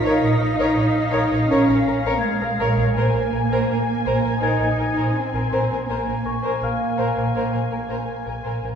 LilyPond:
<<
  \new Staff \with { instrumentName = "Violin section" } { \time 4/4 \key aes \mixolydian \tempo 4 = 82 << { ces''''2~ ces''''8 r4. | r1 | r1 | } \\ { bes'''2.~ bes'''8 r8 | r1 | r1 | } >> }
  \new Staff \with { instrumentName = "Celesta" } { \time 4/4 \key aes \mixolydian c''''4. r4. aes'''4~ | aes'''2 aes'''2~ | aes'''8 des'''8 <f'' f'''>2. | }
  \new Staff \with { instrumentName = "Violin section" } { \time 4/4 \key aes \mixolydian f''1 | aes''1 | aes''2.~ aes''8 r8 | }
  \new Staff \with { instrumentName = "Violin section" } { \time 4/4 \key aes \mixolydian <bes' des''>16 <bes' des''>16 bes'16 <bes' des''>16 <bes' des''>16 r16 <bes' des''>16 <bes' des''>16 <bes' des''>16 <bes' des''>16 bes'16 <bes' des''>16 r16 bes'16 <bes' des''>16 <bes' des''>16 | <bes' c''>16 <bes' c''>16 bes'16 <bes' c''>16 <bes' c''>16 r16 <bes' c''>16 <bes' c''>16 <bes' c''>16 <bes' c''>16 bes'16 <bes' c''>16 r16 bes'16 <bes' c''>16 <bes' c''>16 | <bes' c''>16 <bes' c''>16 bes'16 <bes' c''>16 <bes' c''>16 r16 <bes' c''>16 <bes' c''>16 <bes' c''>16 <bes' c''>16 bes'16 <bes' c''>16 r16 bes'16 <bes' c''>16 <bes' c''>16 | }
  \new Staff \with { instrumentName = "Cello section" } { \time 4/4 \key aes \mixolydian ees'2 des'4 aes4 | bes2 ees'4 c'4 | bes2.~ bes8 r8 | }
  \new Staff \with { instrumentName = "Double bass section" } { \clef bass \time 4/4 \key aes \mixolydian bes,,16 bes,,16 bes,,16 bes,,16 bes,,16 r16 bes,,16 bes,,16 bes,,16 bes,,16 bes,,16 bes,,16 r16 bes,,16 bes,,16 bes,,16 | bes,,16 bes,,16 bes,,16 bes,,16 bes,,16 r16 bes,,16 bes,,16 bes,,16 bes,,16 bes,,16 bes,,16 r16 bes,,16 bes,,16 bes,,16 | bes,,16 bes,,16 bes,,16 bes,,16 bes,,16 r16 bes,,16 bes,,16 bes,,16 bes,,16 bes,,16 bes,,16 r16 bes,,16 bes,,16 bes,,16 | }
>>